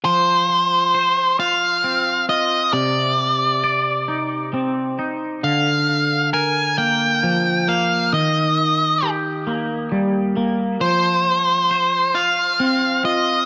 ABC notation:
X:1
M:6/8
L:1/8
Q:3/8=45
K:Fdor
V:1 name="Lead electric guitar"
c3 f2 e | d4 z2 | f2 a g2 f | e2 z4 |
c3 f2 e |]
V:2 name="Clean electric guitar"
F,2 c F C F | C,2 d E C E | D,2 B B, F, B, | E,2 G B, G, B, |
F,2 c F C F |]